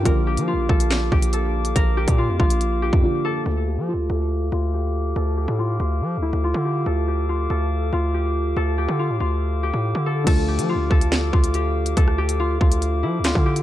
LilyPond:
<<
  \new Staff \with { instrumentName = "Glass harmonica" } { \time 4/4 \key d \minor \tempo 4 = 141 <bes f'' d'''>1~ | <bes f'' d'''>1 | <a' f'' d'''>1~ | <a' f'' d'''>1~ |
<a' f'' d'''>1~ | <a' f'' d'''>1 | <a' f'' d'''>1~ | <a' f'' d'''>1 | }
  \new Staff \with { instrumentName = "Harp" } { \time 4/4 \key d \minor bes'8 g'8 f'8 a'4 g'8 a'4 | bes'8 g'8 f'8 f'8 r8 g'4 a'8 | a'8 g'8 f'8 a'4 f'8 g'4 | a'8 g'8 f'8 f'8 r8 e'8 f'8 g'8 |
a'8 g'8 f'8 a'4 f'8 g'4 | a'8 g'8 f'8 f'8 r8 g'4 a'8 | a'8 g'8 f'8 a'4 f'8 g'4 | a'8 g'8 f'8 f'8 r8 e'8 f'8 g'8 | }
  \new Staff \with { instrumentName = "Felt piano" } { \clef bass \time 4/4 \key d \minor <d f bes f'>1~ | <d f bes f'>2. <d f bes f'>4 | r1 | r1 |
r1 | r1 | <d f a f'>1~ | <d f a f'>1 | }
  \new Staff \with { instrumentName = "808-style bass" } { \clef bass \time 4/4 \key d \minor bes,,8. f16. bes,,16. bes,,4 bes,,4. | bes,,8. bes,8 f,16 bes,,4~ bes,,16 f,16 r4 | d,8. f16. d,16. d,4 d,4. | d,8. a,8. d,8 f16. d,16. d,8 d8. |
d,4. d,4 d,4. | d,8. d8 a,16 d,4~ d,16 a,8 d8. | d,8. f16. d,16. d,4 d,4. | d,4. d,4 f16. d,16. d8. | }
  \new DrumStaff \with { instrumentName = "Drums" } \drummode { \time 4/4 <hh bd>8. hh16 r8 bd16 hh16 <hc sn>8 bd16 hh16 hh8. hh16 | <hh bd>8. <hh bd>16 r8 bd16 hh16 hh8. bd16 r4 | r4 r4 r4 r4 | r4 r4 r4 r4 |
r4 r4 r4 r4 | r4 r4 r4 r4 | <cymc hh bd>8. hh16 r8 bd16 hh16 <hc sn>8 bd16 hh16 hh8. hh16 | <hh bd>16 ss8 hh16 r8 bd16 hh16 hh4 <hc hh sn>16 bd8 hh16 | }
>>